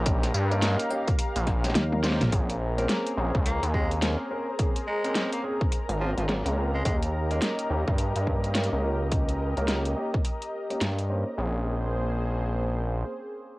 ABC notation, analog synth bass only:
X:1
M:4/4
L:1/16
Q:"Swing 16ths" 1/4=106
K:Bbdor
V:1 name="Analog synth bass" clef=bass
B,,,2 G,,3 z4 B,,,3 z4 | B,,,4 z2 B,,, D,,2 E,,4 z3 | z8 z A,,,2 A,,,2 D,,3 | E,,4 z2 E,, G,,2 G,,4 D,,3- |
D,,3 D,,3 z6 G,,3 z | B,,,12 z4 |]